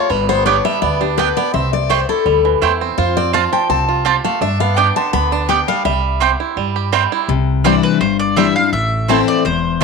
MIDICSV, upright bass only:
0, 0, Header, 1, 2, 480
1, 0, Start_track
1, 0, Key_signature, 0, "major"
1, 0, Tempo, 359712
1, 135, Time_signature, 4, 2, 24, 8
1, 13129, End_track
2, 0, Start_track
2, 0, Title_t, "Upright bass"
2, 0, Program_c, 0, 32
2, 136, Note_on_c, 0, 31, 94
2, 778, Note_off_c, 0, 31, 0
2, 1097, Note_on_c, 0, 38, 85
2, 1738, Note_off_c, 0, 38, 0
2, 2057, Note_on_c, 0, 36, 100
2, 2697, Note_off_c, 0, 36, 0
2, 3010, Note_on_c, 0, 38, 91
2, 3418, Note_off_c, 0, 38, 0
2, 3495, Note_on_c, 0, 40, 86
2, 3901, Note_off_c, 0, 40, 0
2, 3978, Note_on_c, 0, 41, 93
2, 4617, Note_off_c, 0, 41, 0
2, 4931, Note_on_c, 0, 36, 91
2, 5572, Note_off_c, 0, 36, 0
2, 5885, Note_on_c, 0, 43, 99
2, 6528, Note_off_c, 0, 43, 0
2, 6849, Note_on_c, 0, 38, 86
2, 7490, Note_off_c, 0, 38, 0
2, 7806, Note_on_c, 0, 36, 86
2, 8448, Note_off_c, 0, 36, 0
2, 8761, Note_on_c, 0, 43, 78
2, 9405, Note_off_c, 0, 43, 0
2, 9720, Note_on_c, 0, 36, 95
2, 10365, Note_off_c, 0, 36, 0
2, 10683, Note_on_c, 0, 31, 80
2, 11328, Note_off_c, 0, 31, 0
2, 11643, Note_on_c, 0, 33, 96
2, 12289, Note_off_c, 0, 33, 0
2, 12608, Note_on_c, 0, 28, 74
2, 13129, Note_off_c, 0, 28, 0
2, 13129, End_track
0, 0, End_of_file